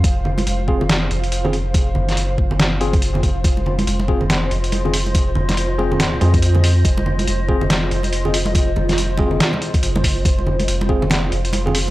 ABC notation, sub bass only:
X:1
M:4/4
L:1/8
Q:"Swing 16ths" 1/4=141
K:Fphr
V:1 name="Sub bass" clef=bass
F,,,2 F,,,3 F,,,3- | F,,, G,,,2 G,,,4 F,,, | F,,,2 F,,,3 F,,,3- | F,,, F,,,4 F,,3 |
F,,,2 F,,,3 F,,,3- | F,,, F,,,3 z2 G,,,2 | F,,,2 F,,,3 F,,,3 |]